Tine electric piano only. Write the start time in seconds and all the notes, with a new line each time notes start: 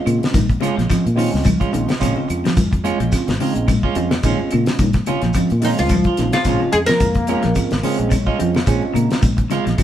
Already playing: G#3 C4 C#4 F4
0.90 G#3 C4 C#4 F4
1.15 G#3 C4 C#4 F4
1.71 G#3 C4 C#4 F4
1.99 G#3 C4 C#4 F4
3.10 G#3 C4 C#4 F4
3.40 G#3 C4 C#4 D#4
3.95 G#3 C4 C#4 F4
4.23 G#3 C4 C#4 F4
5.35 G#3 C4 C#4 F4
5.61 G#3 C4 C#4 F4
6.18 G#3 C4 C#4 F4
6.45 G#3 C4 C#4 F4
7.55 G#3 C4 C#4 F4
7.83 G#3 C4 C#4 G#4 C5
8.12 C#5
8.27 D#5
8.38 G#3 C4 C#4 F4 F5
8.67 G#3 C4 C#4 F4 G#5
8.82 G#5
8.94 A#5
9.78 G#3 C4 C#4 F4